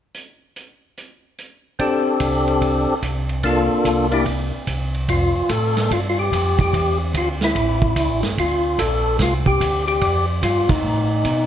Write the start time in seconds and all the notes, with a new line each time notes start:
0.14 closed hi-hat
0.56 closed hi-hat
0.97 closed hi-hat
1.38 closed hi-hat
1.79 C4 D4 G4 A4, kick, ride
2.20 C2, kick, hi-hat pedal, ride
2.48 ride
2.61 kick, ride
3.02 C2, kick, hi-hat pedal, ride
3.29 ride
3.43 A#3 D4 F4 A4, kick, ride
3.84 C2, kick, hi-hat pedal, ride
4.11 A#3 D4 E4 G4, ride
4.26 kick, ride
4.67 C2, kick, hi-hat pedal, ride
4.95 ride
5.08 F2 F4, kick, ride
5.35 F2
5.49 A2 A4, kick, hi-hat pedal, ride
5.77 snare, ride
5.90 G2 F4, kick, ride
6.09 F4
6.19 G4
6.32 F2, kick, hi-hat pedal, ride
6.59 G4, kick, ride
6.73 E2, kick, ride
7.13 D2, kick, hi-hat pedal, ride
7.18 F4
7.41 E4, snare, ride
7.55 A1, kick, ride
7.82 kick
7.96 C#2, kick, hi-hat pedal, ride
8.09 A1
8.23 G1, snare, ride
8.37 D2 F4, kick, ride
8.78 A#1 A4, kick, hi-hat pedal, ride
9.19 C2 F4, kick, snare, ride
9.46 G4, kick
9.60 D2, kick, hi-hat pedal, ride
9.88 G4, ride
10.01 F2, kick, ride
10.42 G2 F4, kick, hi-hat pedal, ride
10.69 G2 D#4, kick, ride
10.84 A2
11.24 B2, kick, hi-hat pedal, ride